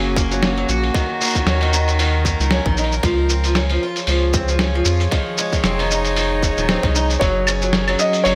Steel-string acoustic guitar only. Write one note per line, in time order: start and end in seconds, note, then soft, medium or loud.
0.00 0.15 F#3 medium
0.17 0.31 A#3 medium
0.31 0.42 F#3 medium
0.42 0.56 C#4 medium
0.57 0.68 F#3 medium
0.69 0.82 F#4 medium
0.95 1.20 D#3 medium
1.21 1.35 A#3 medium
1.36 1.46 D#3 medium
1.48 1.61 C#4 medium
1.62 1.72 D#3 medium
1.74 1.87 D#4 medium
1.99 2.24 D#3 medium
2.25 2.39 A#3 medium
2.41 2.51 D#3 medium
2.52 2.65 C#4 medium
2.66 2.76 D#3 medium
2.78 2.92 D#4 medium
3.05 3.29 F3 medium
3.31 3.44 C4 medium
3.45 3.55 F3 medium
3.56 3.69 C#4 medium
3.70 3.81 F3 medium
3.83 3.96 F4 medium
4.09 4.33 F3 medium
4.35 4.48 C4 medium
4.50 4.59 F3 medium
4.61 4.74 C#4 medium
4.75 4.85 F3 medium
4.87 5.00 F4 medium
5.13 5.37 D#3 medium
5.39 5.52 G#3 medium
5.54 5.64 D#3 medium
5.65 5.78 C4 medium
5.80 5.90 D#3 medium
5.92 6.05 D#4 medium
6.17 6.42 D#3 medium
6.44 6.57 G#3 medium
6.58 6.68 D#3 medium
6.69 6.82 C4 medium
6.85 6.94 D#3 medium
6.96 7.09 D#4 medium
7.22 7.46 F#3 medium
7.49 7.62 C#4 medium
7.63 7.73 F#3 medium
7.74 7.87 C#4 medium
7.89 7.98 F#3 medium
8.00 8.13 F#4 medium
8.26 8.35 F#3 medium